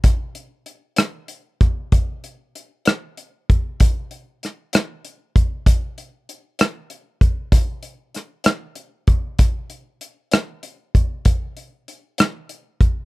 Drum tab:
HH |xxxxxx|xxxxxx|xxxxxx|xxxxxx|
SD |---r--|---r--|--rr--|---r--|
BD |o----o|o----o|o----o|o----o|

HH |xxxxxx|xxxxxx|xxxxxx|
SD |--rr--|---r--|---r--|
BD |o----o|o----o|o----o|